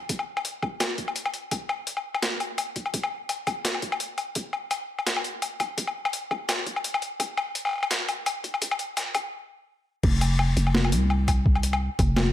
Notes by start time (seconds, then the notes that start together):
0.09 kick, closed hi-hat
0.19 low woodblock
0.37 low woodblock
0.45 closed hi-hat
0.62 kick, low woodblock
0.80 snare, closed hi-hat, low woodblock
0.98 kick, closed hi-hat
1.08 low woodblock
1.16 closed hi-hat
1.26 low woodblock
1.34 closed hi-hat
1.51 kick, closed hi-hat, low woodblock
1.69 low woodblock
1.87 closed hi-hat
1.97 low woodblock
2.15 low woodblock
2.23 snare, closed hi-hat
2.40 closed hi-hat, low woodblock
2.58 closed hi-hat, low woodblock
2.76 kick, closed hi-hat
2.86 low woodblock
2.94 kick, closed hi-hat
3.03 low woodblock
3.29 closed hi-hat, low woodblock
3.47 kick, closed hi-hat, low woodblock
3.65 snare, closed hi-hat
3.75 low woodblock
3.82 kick, closed hi-hat
3.92 low woodblock
4.00 closed hi-hat
4.18 closed hi-hat, low woodblock
4.35 kick, closed hi-hat
4.53 low woodblock
4.71 closed hi-hat, low woodblock
4.99 low woodblock
5.07 snare, closed hi-hat
5.16 low woodblock
5.24 closed hi-hat
5.42 closed hi-hat, low woodblock
5.60 kick, closed hi-hat, low woodblock
5.78 kick, closed hi-hat
5.87 low woodblock
6.05 low woodblock
6.13 closed hi-hat
6.31 kick, low woodblock
6.49 snare, closed hi-hat, low woodblock
6.66 kick, closed hi-hat
6.76 low woodblock
6.84 closed hi-hat
6.94 low woodblock
7.02 closed hi-hat
7.20 kick, closed hi-hat, low woodblock
7.37 low woodblock
7.55 closed hi-hat
7.65 low woodblock
7.67 low woodblock
7.69 low woodblock
7.71 low woodblock
7.75 low woodblock
7.78 low woodblock
7.80 low woodblock
7.83 low woodblock
7.91 snare, closed hi-hat
8.09 closed hi-hat, low woodblock
8.26 closed hi-hat, low woodblock
8.44 kick, closed hi-hat
8.54 low woodblock
8.62 kick, closed hi-hat
8.71 low woodblock
8.79 closed hi-hat
8.97 snare, closed hi-hat, low woodblock
9.15 kick, closed hi-hat, low woodblock
10.03 F1, kick, crash
10.21 closed hi-hat, low woodblock
10.39 low woodblock
10.57 F1, closed hi-hat
10.67 low woodblock
10.75 snare
10.85 low woodblock
10.92 C2, closed hi-hat
11.10 low woodblock
11.28 kick, closed hi-hat, low woodblock
11.46 kick
11.55 low woodblock
11.63 closed hi-hat
11.73 low woodblock
11.99 F1, kick, closed hi-hat, low woodblock
12.16 snare, low woodblock